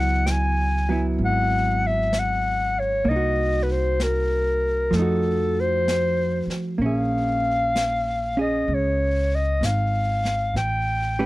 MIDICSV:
0, 0, Header, 1, 6, 480
1, 0, Start_track
1, 0, Tempo, 931677
1, 1576, Time_signature, 4, 2, 24, 8
1, 2539, Tempo, 940439
1, 5770, End_track
2, 0, Start_track
2, 0, Title_t, "Clarinet"
2, 0, Program_c, 0, 71
2, 0, Note_on_c, 0, 78, 83
2, 135, Note_on_c, 0, 79, 55
2, 143, Note_off_c, 0, 78, 0
2, 159, Note_on_c, 0, 80, 84
2, 167, Note_off_c, 0, 79, 0
2, 535, Note_off_c, 0, 80, 0
2, 643, Note_on_c, 0, 78, 83
2, 963, Note_on_c, 0, 76, 80
2, 971, Note_off_c, 0, 78, 0
2, 1128, Note_on_c, 0, 78, 72
2, 1136, Note_off_c, 0, 76, 0
2, 1439, Note_on_c, 0, 73, 70
2, 1447, Note_off_c, 0, 78, 0
2, 1591, Note_on_c, 0, 75, 80
2, 1598, Note_off_c, 0, 73, 0
2, 1870, Note_on_c, 0, 71, 47
2, 1877, Note_off_c, 0, 75, 0
2, 1914, Note_on_c, 0, 72, 69
2, 1922, Note_off_c, 0, 71, 0
2, 2075, Note_on_c, 0, 70, 75
2, 2083, Note_off_c, 0, 72, 0
2, 2553, Note_on_c, 0, 69, 70
2, 2561, Note_off_c, 0, 70, 0
2, 2884, Note_on_c, 0, 72, 76
2, 2891, Note_off_c, 0, 69, 0
2, 3421, Note_off_c, 0, 72, 0
2, 3521, Note_on_c, 0, 77, 82
2, 4292, Note_off_c, 0, 77, 0
2, 4315, Note_on_c, 0, 75, 72
2, 4486, Note_on_c, 0, 73, 75
2, 4494, Note_off_c, 0, 75, 0
2, 4795, Note_on_c, 0, 75, 67
2, 4803, Note_off_c, 0, 73, 0
2, 4949, Note_on_c, 0, 77, 68
2, 4957, Note_off_c, 0, 75, 0
2, 5416, Note_off_c, 0, 77, 0
2, 5419, Note_on_c, 0, 79, 73
2, 5770, Note_off_c, 0, 79, 0
2, 5770, End_track
3, 0, Start_track
3, 0, Title_t, "Hollow-body jazz guitar"
3, 0, Program_c, 1, 26
3, 0, Note_on_c, 1, 54, 44
3, 0, Note_on_c, 1, 59, 47
3, 0, Note_on_c, 1, 64, 47
3, 452, Note_off_c, 1, 54, 0
3, 458, Note_off_c, 1, 59, 0
3, 458, Note_on_c, 1, 54, 33
3, 464, Note_on_c, 1, 59, 36
3, 468, Note_off_c, 1, 64, 0
3, 474, Note_on_c, 1, 64, 36
3, 1569, Note_off_c, 1, 54, 0
3, 1571, Note_on_c, 1, 58, 35
3, 1579, Note_off_c, 1, 59, 0
3, 1584, Note_off_c, 1, 64, 0
3, 1602, Note_on_c, 1, 63, 40
3, 1628, Note_on_c, 1, 66, 44
3, 2528, Note_on_c, 1, 53, 35
3, 2535, Note_off_c, 1, 58, 0
3, 2546, Note_on_c, 1, 57, 38
3, 2551, Note_off_c, 1, 63, 0
3, 2564, Note_off_c, 1, 66, 0
3, 2569, Note_on_c, 1, 63, 35
3, 2584, Note_on_c, 1, 66, 44
3, 3483, Note_off_c, 1, 57, 0
3, 3485, Note_on_c, 1, 58, 35
3, 3497, Note_off_c, 1, 53, 0
3, 3500, Note_off_c, 1, 63, 0
3, 3502, Note_on_c, 1, 61, 37
3, 3522, Note_off_c, 1, 66, 0
3, 3524, Note_on_c, 1, 68, 35
3, 4290, Note_off_c, 1, 61, 0
3, 4296, Note_on_c, 1, 61, 33
3, 4299, Note_off_c, 1, 68, 0
3, 4305, Note_on_c, 1, 68, 36
3, 5411, Note_off_c, 1, 58, 0
3, 5416, Note_off_c, 1, 61, 0
3, 5421, Note_off_c, 1, 68, 0
3, 5736, Note_on_c, 1, 67, 45
3, 5737, Note_on_c, 1, 57, 39
3, 5739, Note_on_c, 1, 61, 44
3, 5740, Note_on_c, 1, 71, 49
3, 5770, Note_off_c, 1, 57, 0
3, 5770, Note_off_c, 1, 61, 0
3, 5770, Note_off_c, 1, 67, 0
3, 5770, Note_off_c, 1, 71, 0
3, 5770, End_track
4, 0, Start_track
4, 0, Title_t, "Upright bass"
4, 0, Program_c, 2, 32
4, 0, Note_on_c, 2, 37, 68
4, 594, Note_off_c, 2, 37, 0
4, 610, Note_on_c, 2, 32, 59
4, 1551, Note_off_c, 2, 32, 0
4, 1568, Note_on_c, 2, 36, 60
4, 2513, Note_off_c, 2, 36, 0
4, 2534, Note_on_c, 2, 41, 56
4, 3315, Note_off_c, 2, 41, 0
4, 3488, Note_on_c, 2, 34, 58
4, 4438, Note_off_c, 2, 34, 0
4, 4453, Note_on_c, 2, 37, 60
4, 4916, Note_off_c, 2, 37, 0
4, 4929, Note_on_c, 2, 32, 63
4, 5392, Note_off_c, 2, 32, 0
4, 5403, Note_on_c, 2, 33, 56
4, 5770, Note_off_c, 2, 33, 0
4, 5770, End_track
5, 0, Start_track
5, 0, Title_t, "Muted upright bass strokes"
5, 3325, Note_on_c, 9, 29, 31
5, 3376, Note_off_c, 9, 29, 0
5, 5770, End_track
6, 0, Start_track
6, 0, Title_t, "Drums"
6, 136, Note_on_c, 9, 25, 28
6, 136, Note_on_c, 9, 38, 34
6, 136, Note_on_c, 9, 44, 41
6, 188, Note_off_c, 9, 38, 0
6, 188, Note_off_c, 9, 44, 0
6, 621, Note_off_c, 9, 25, 0
6, 621, Note_on_c, 9, 25, 28
6, 1096, Note_off_c, 9, 25, 0
6, 1096, Note_on_c, 9, 25, 31
6, 1096, Note_on_c, 9, 38, 34
6, 1096, Note_on_c, 9, 44, 46
6, 1148, Note_off_c, 9, 38, 0
6, 1148, Note_off_c, 9, 44, 0
6, 1582, Note_off_c, 9, 25, 0
6, 1582, Note_on_c, 9, 25, 28
6, 2060, Note_off_c, 9, 25, 0
6, 2060, Note_on_c, 9, 25, 31
6, 2060, Note_on_c, 9, 38, 34
6, 2060, Note_on_c, 9, 44, 40
6, 2111, Note_off_c, 9, 38, 0
6, 2111, Note_off_c, 9, 44, 0
6, 2538, Note_off_c, 9, 25, 0
6, 2538, Note_on_c, 9, 25, 28
6, 2538, Note_on_c, 9, 38, 21
6, 2589, Note_off_c, 9, 38, 0
6, 3024, Note_off_c, 9, 25, 0
6, 3024, Note_on_c, 9, 25, 27
6, 3024, Note_on_c, 9, 38, 36
6, 3024, Note_on_c, 9, 44, 40
6, 3075, Note_off_c, 9, 38, 0
6, 3075, Note_off_c, 9, 44, 0
6, 3340, Note_on_c, 9, 38, 23
6, 3391, Note_off_c, 9, 38, 0
6, 3500, Note_off_c, 9, 25, 0
6, 3500, Note_on_c, 9, 25, 29
6, 3983, Note_off_c, 9, 25, 0
6, 3983, Note_on_c, 9, 25, 34
6, 3983, Note_on_c, 9, 38, 33
6, 3983, Note_on_c, 9, 44, 42
6, 4034, Note_off_c, 9, 38, 0
6, 4034, Note_off_c, 9, 44, 0
6, 4465, Note_off_c, 9, 25, 0
6, 4465, Note_on_c, 9, 25, 26
6, 4939, Note_off_c, 9, 25, 0
6, 4939, Note_on_c, 9, 25, 34
6, 4939, Note_on_c, 9, 38, 39
6, 4939, Note_on_c, 9, 44, 45
6, 4990, Note_off_c, 9, 38, 0
6, 4990, Note_off_c, 9, 44, 0
6, 5256, Note_on_c, 9, 38, 22
6, 5307, Note_off_c, 9, 38, 0
6, 5414, Note_off_c, 9, 25, 0
6, 5414, Note_on_c, 9, 25, 33
6, 5414, Note_on_c, 9, 38, 24
6, 5465, Note_off_c, 9, 38, 0
6, 5770, Note_off_c, 9, 25, 0
6, 5770, End_track
0, 0, End_of_file